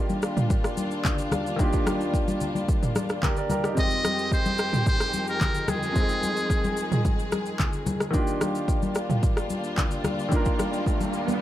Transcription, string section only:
0.00 3.74 D#2 medium
0.00 3.73 G3 medium
0.00 3.73 D4 medium
0.00 3.73 F4 medium
3.77 8.10 F2 medium
3.77 8.10 D#3 medium
3.77 8.10 G#3 medium
3.77 5.93 G4 medium
5.96 8.12 G#4 medium
8.14 11.41 D#2 medium
8.14 11.41 G3 medium
8.14 11.41 D4 medium
8.14 11.41 F4 medium

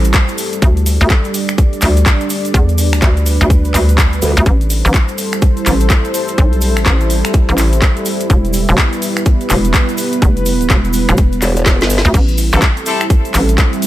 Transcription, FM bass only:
0.00 0.13 A1 loud
0.62 0.99 D2 loud
1.01 1.09 D2 loud
1.82 2.05 D2 loud
2.54 3.01 E2 loud
3.02 3.39 D2 loud
3.41 3.73 D2 loud
3.74 4.21 D2 medium
4.37 4.45 D2 loud
4.46 4.83 A1 loud
4.85 4.93 A1 loud
5.66 5.89 A1 medium
6.38 6.85 B1 loud
6.86 7.22 A1 loud
7.49 7.81 A1 loud
8.30 8.66 E1 loud
8.69 8.77 E1 loud
9.50 9.73 E1 loud
10.22 10.69 F1 loud
10.70 11.06 E1 loud
11.09 11.41 E1 medium
12.05 12.13 D2 medium
12.14 12.51 A1 loud
12.53 12.61 A1 loud
13.34 13.57 A1 loud

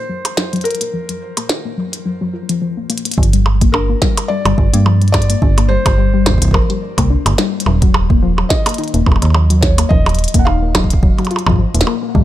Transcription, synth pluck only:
0.09 0.23 F#3 medium
0.37 0.51 F#3 medium
0.53 0.60 F#3 medium
0.81 0.93 A#3 medium
0.93 1.02 F3 medium
1.09 1.20 F#3 medium
1.37 1.49 A#3 medium
1.49 1.64 D#4 medium
1.65 1.76 A#3 medium
1.77 1.91 F#3 medium
2.06 2.19 F#3 medium
2.21 2.28 F#3 loud
2.34 2.47 F4 medium
2.49 2.60 F3 loud
2.62 2.76 F3 medium
2.77 2.88 A#3 medium
2.90 2.98 A#3 loud
3.05 3.16 A#3 medium
3.18 3.26 F3 medium
3.33 3.44 G3 medium
3.61 3.73 A#3 medium
3.74 3.89 D4 medium
3.89 4.00 A#3 medium
4.02 4.16 G3 medium
4.30 4.44 G3 medium
4.46 4.52 G3 loud
4.74 4.85 A#3 medium
4.86 4.94 F3 medium
5.02 5.13 G3 medium
5.30 5.41 A#3 medium
5.42 5.57 D4 medium
5.58 5.69 A#3 medium
5.70 5.84 G3 medium
5.98 6.12 G3 medium
6.14 6.20 G3 loud
6.42 6.54 A#3 medium
6.54 6.62 F3 medium
6.70 6.81 G3 medium
6.98 7.10 A#3 medium
7.10 7.25 D4 medium
7.26 7.37 A#3 medium
7.38 7.52 G3 medium
7.66 7.80 F#3 medium
7.82 7.88 F#3 loud
8.10 8.22 A#3 medium
8.22 8.31 F3 medium
8.38 8.49 F#3 medium
8.66 8.78 A#3 medium
8.78 8.93 D#4 medium
8.94 9.05 A#3 medium
9.06 9.20 F#3 medium
9.35 9.48 F#3 medium
9.50 9.57 F#3 loud
9.78 9.90 A#3 medium
9.91 9.99 F3 medium
10.06 10.17 F#3 medium
10.34 10.46 A#3 medium
10.47 10.62 D#4 medium
10.62 10.73 A#3 medium
10.75 10.89 F#3 medium
11.03 11.17 F#3 medium
11.19 11.25 F#3 loud
11.31 11.45 F4 medium
11.47 11.57 F3 loud
11.59 11.73 F3 medium
11.75 11.86 A#3 medium
11.87 11.95 A#3 loud
12.03 12.13 A#3 medium
12.15 12.23 G3 medium

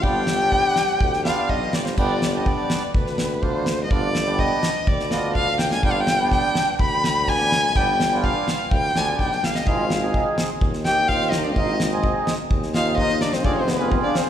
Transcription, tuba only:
0.04 0.62 G1 medium
1.01 1.30 D2 medium
1.49 1.71 B1 medium
1.74 1.95 G1 medium
1.98 2.56 G1 loud
2.95 3.92 D2 loud
3.91 4.49 G1 loud
4.88 5.85 D2 medium
5.83 6.41 G1 loud
6.80 7.77 D2 medium
7.76 8.33 G1 loud
8.72 8.95 D2 medium
8.95 9.17 D2 medium
9.19 9.41 B1 medium
9.42 9.69 G1 medium
9.67 10.24 G#1 loud
10.61 11.58 D#2 loud
11.57 12.13 G#1 loud
12.50 13.46 D#2 loud
13.45 14.01 F1 loud

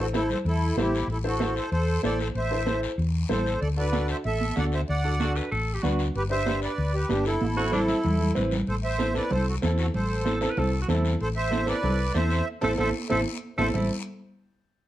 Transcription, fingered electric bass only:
0.00 0.33 A1 medium
0.45 0.70 E2 medium
0.77 1.02 A1 medium
1.08 1.59 A1 medium
1.72 1.97 E2 medium
2.04 2.29 A1 medium
2.35 2.86 A1 medium
2.98 3.23 E2 medium
3.30 3.56 A1 medium
3.62 4.12 D2 medium
4.25 4.50 A1 medium
4.57 4.82 D2 medium
4.89 5.39 D2 medium
5.52 5.77 A1 medium
5.84 6.09 D2 medium
6.15 6.66 G1 medium
6.78 7.03 D2 medium
7.10 7.35 G1 medium
7.41 7.92 A1 medium
8.05 8.30 E2 loud
8.37 8.62 A1 medium
8.68 9.19 A1 loud
9.32 9.57 C2 medium
9.63 9.88 E2 medium
9.95 10.45 A1 medium
10.58 10.83 C2 medium
10.89 11.14 E2 medium
11.21 11.72 A1 medium
11.84 12.09 C2 loud
12.15 12.40 E2 loud
12.63 12.75 A1 loud
12.79 12.91 A1 loud
13.12 13.23 A1 loud
13.59 13.70 A1 loud
13.74 13.89 A1 medium

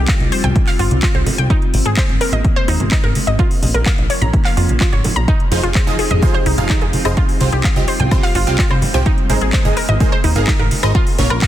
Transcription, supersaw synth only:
5.52 5.60 F3 medium
5.52 5.60 D#4 medium
5.52 5.60 F4 medium
5.52 5.60 G#4 medium
5.52 5.60 C5 loud
5.87 5.96 F3 medium
5.87 5.96 D#4 medium
5.87 5.96 F4 medium
5.87 5.96 G#4 medium
5.87 5.96 D#5 loud
6.23 6.37 F3 loud
6.23 6.37 D#4 medium
6.23 6.37 F4 medium
6.23 6.37 G#4 medium
6.23 6.37 C5 loud
6.58 6.72 F3 medium
6.58 6.72 D#4 medium
6.58 6.72 F4 medium
6.58 6.72 G#4 medium
6.58 6.72 F5 medium
7.05 7.14 D#4 medium
7.05 7.14 F4 medium
7.05 7.14 G#4 medium
7.05 7.14 C5 medium
7.41 7.49 C3 medium
7.41 7.49 C4 medium
7.41 7.49 F4 medium
7.41 7.49 G4 medium
7.41 7.49 C5 loud
7.76 7.85 C3 medium
7.76 7.85 C4 medium
7.76 7.85 F4 medium
7.76 7.85 G4 medium
7.76 7.85 D#5 loud
8.12 8.25 C3 loud
8.12 8.26 C4 medium
8.12 8.25 F4 medium
8.12 8.26 G4 medium
8.12 8.25 C5 loud
8.47 8.61 C3 medium
8.47 8.61 C4 medium
8.47 8.61 F4 medium
8.47 8.61 G4 medium
8.47 8.61 F5 medium
8.94 9.03 G#2 medium
8.94 9.03 C4 medium
8.94 9.03 F4 medium
8.94 9.03 G4 medium
8.94 9.03 C5 medium
9.30 9.38 G#3 loud
9.30 9.38 D#4 medium
9.30 9.38 G#4 medium
9.30 9.38 A#4 medium
9.30 9.38 C5 loud
9.65 9.74 G#3 medium
9.65 9.74 D#4 medium
9.65 9.74 G#4 medium
9.65 9.74 A#4 medium
9.65 9.74 D#5 loud
10.00 10.14 G#3 loud
10.00 10.14 D#4 medium
10.00 10.14 G#4 medium
10.00 10.14 A#4 medium
10.00 10.14 C5 loud
10.36 10.50 G#3 medium
10.36 10.50 D#4 medium
10.36 10.50 G#4 medium
10.36 10.50 A#4 medium
10.36 10.50 F5 medium
10.83 10.92 D#4 medium
10.83 10.92 G#4 medium
10.83 10.92 A#4 medium
10.83 10.92 C5 medium
11.19 11.27 A#2 loud
11.19 11.27 C#4 medium
11.19 11.27 F4 medium
11.19 11.27 A#4 medium
11.19 11.27 C#5 loud

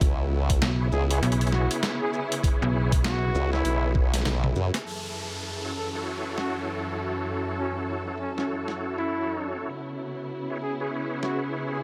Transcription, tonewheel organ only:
0.80 0.88 E4 medium
0.80 0.88 G#4 medium
0.80 0.88 B4 medium
0.80 0.88 C#5 loud
1.10 3.18 E4 loud
1.10 3.18 G#4 medium
1.10 3.18 B4 medium
1.10 3.18 C#5 loud
3.22 3.30 E4 medium
3.22 3.30 G#4 medium
3.22 3.30 B4 medium
3.22 3.30 C#5 loud
3.53 3.93 E4 medium
3.53 3.93 G#4 medium
3.53 3.93 B4 medium
3.53 3.93 C#5 loud
3.95 4.14 E4 medium
3.95 4.14 G#4 medium
3.95 4.14 B4 medium
3.95 4.14 C#5 medium
5.65 5.73 E4 medium
5.65 5.73 F#4 medium
5.65 5.73 A4 medium
5.65 5.73 C#5 medium
5.95 8.03 E4 medium
5.95 8.03 F#4 medium
5.95 8.03 A4 medium
5.95 8.03 C#5 medium
8.07 8.15 E4 medium
8.07 8.15 F#4 medium
8.07 8.15 A4 medium
8.07 8.15 C#5 medium
8.38 9.70 E4 medium
8.38 9.70 F#4 medium
8.38 9.69 A4 medium
8.38 9.70 C#5 loud
10.50 10.58 E4 medium
10.50 10.58 G#4 medium
10.50 10.58 B4 medium
10.50 10.58 C#5 medium
10.80 11.83 E4 medium
10.80 11.83 G#4 medium
10.80 11.83 B4 medium
10.80 11.83 C#5 loud

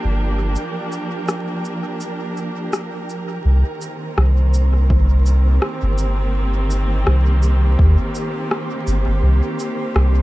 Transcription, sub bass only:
0.04 0.56 G1 loud
3.45 3.63 C2 loud
4.17 5.59 C2 loud
5.82 7.04 G1 loud
7.07 7.76 C2 loud
7.79 7.97 D#2 medium
8.87 9.05 G1 loud
9.07 9.21 G1 loud
9.23 9.41 C2 loud
9.95 10.22 C2 loud

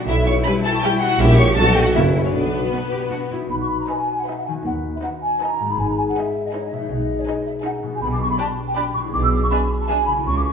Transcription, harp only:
0.00 0.17 B3 soft
0.00 0.10 F#4 soft
0.00 1.22 B4 soft
0.00 0.10 D5 soft
0.00 0.10 F#5 soft
0.09 1.22 B2 medium
0.18 1.22 B3 soft
0.27 1.10 C#4 soft
0.37 0.54 G4 medium
0.46 0.92 C#5 medium
0.56 1.01 G4 medium
0.65 0.82 G5 medium
0.74 1.59 C#6 medium
0.84 1.59 G5 medium
0.93 1.59 C#5 soft
1.02 1.47 G4 medium
1.11 1.38 C#4 medium
1.21 1.59 A#2 medium
1.30 1.59 A#3 soft
1.39 1.59 C#4 medium
1.49 1.59 G4 medium
1.57 1.97 B2 medium
1.67 2.42 F#3 medium
1.76 1.97 D4 medium
1.86 2.23 F#4 medium
1.95 2.35 F#2 medium
2.05 2.35 C#3 soft
2.14 2.35 C#4 soft
2.24 2.62 F#4 soft
2.34 3.32 B2 soft
2.44 5.79 F#3 soft
2.53 3.40 D4 soft
2.63 3.30 F#4 soft
2.72 3.21 B4 soft
2.82 3.52 D5 soft
2.92 3.10 F#5 soft
3.02 6.92 B5 soft
3.12 5.79 F#5 soft
3.22 3.45 B4 soft
3.31 4.58 B2 soft
3.31 3.41 F#4 soft
3.37 5.68 D#4 soft
3.41 3.52 D4 soft
3.41 4.56 F#4 soft
3.47 4.60 B4 soft
4.48 5.71 D#3 soft
4.53 5.63 B3 soft
4.57 5.75 F#4 soft
4.61 8.01 B4 soft
5.60 6.82 G#2 soft
5.65 6.75 B3 soft
5.69 6.80 D#4 soft
5.74 6.84 G#4 soft
6.72 7.82 B2 soft
6.76 7.86 B3 soft
6.81 7.98 D#4 soft
6.85 8.00 G#4 soft
7.83 8.94 B2 medium
7.87 10.20 B3 soft
7.91 8.98 D4 soft
7.96 9.12 G4 soft
8.95 10.18 B2 soft
8.99 10.20 D4 soft
9.04 10.15 E4 soft
9.08 10.25 G#4 soft
10.07 10.53 C#3 soft
10.12 10.53 C#4 soft
10.16 10.53 E4 soft
10.21 10.53 A4 soft

